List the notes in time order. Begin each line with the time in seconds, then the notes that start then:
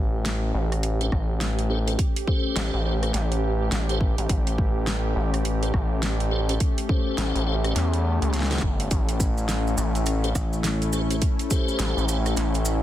Already playing: A1 A3 C#4 G4
0.26 snare, closed hi-hat
0.54 A1
0.72 cross-stick, closed hi-hat
0.83 closed hi-hat
1.01 C#4 G4 A4 C5, closed hi-hat
1.12 A1, kick, cross-stick
1.41 snare, closed hi-hat
1.59 closed hi-hat
1.70 C#4 G4 A4 C5
1.87 C#4 G4 A4 C5, closed hi-hat
1.99 kick, closed hi-hat
2.16 closed hi-hat
2.28 C#4 G4 A4 C5, kick
2.56 A1, snare, closed hi-hat
2.74 A1
2.85 C#4 G4 A4 C5
3.03 C#4 G4 A4 C5, cross-stick, closed hi-hat
3.14 A1, snare, closed hi-hat
3.32 closed hi-hat
3.72 A1, snare, closed hi-hat
3.89 C#4 G4 A4 C5, closed hi-hat
4.01 kick
4.18 A1, closed hi-hat
4.29 A1, kick, closed hi-hat
4.47 closed hi-hat
4.58 kick
4.87 snare
5.16 A1
5.34 cross-stick, closed hi-hat
5.45 closed hi-hat
5.63 C#4 G4 A4 C5, closed hi-hat
5.74 A1, kick, cross-stick
6.03 snare, closed hi-hat
6.20 closed hi-hat
6.31 C#4 G4 A4 C5
6.49 C#4 G4 A4 C5, closed hi-hat
6.60 kick, closed hi-hat
6.78 closed hi-hat
6.89 C#4 G4 A4 C5, kick
7.18 A1, snare, closed hi-hat
7.35 A1, closed hi-hat
7.47 C#4 G4 A4 C5
7.64 C#4 G4 A4 C5, cross-stick, closed hi-hat
7.76 E2, snare, closed hi-hat
7.94 closed hi-hat
8.22 C#2, closed hi-hat
8.34 snare, closed hi-hat
8.39 snare
8.43 snare
8.51 C#4 G4 A4 C5, snare, closed hi-hat
8.52 snare
8.58 G1, kick, snare
8.80 closed hi-hat
8.91 A1 E4, kick, closed hi-hat, maracas
9.09 closed hi-hat, maracas
9.20 kick, maracas
9.38 maracas
9.49 snare, closed hi-hat, maracas
9.67 maracas
9.78 A1, maracas
9.95 closed hi-hat, maracas
10.06 cross-stick, closed hi-hat, maracas
10.24 C#4 G4 A4 C5, closed hi-hat, maracas
10.35 A1, kick, cross-stick, maracas
10.53 maracas
10.64 snare, closed hi-hat, maracas
10.82 closed hi-hat, maracas
10.93 C#4 G4 A4 C5, maracas
11.11 C#4 G4 A4 C5, closed hi-hat, maracas
11.22 kick, closed hi-hat, maracas
11.39 closed hi-hat, maracas
11.50 C#4 G4 A4 C5, kick, maracas
11.68 maracas
11.79 A1, snare, closed hi-hat, maracas
11.97 A1, maracas
12.08 C#4 G4 A4 C5, maracas
12.26 C#4 G4 A4 C5, cross-stick, closed hi-hat, maracas
12.37 A1, snare, closed hi-hat, maracas
12.54 closed hi-hat, maracas
12.65 maracas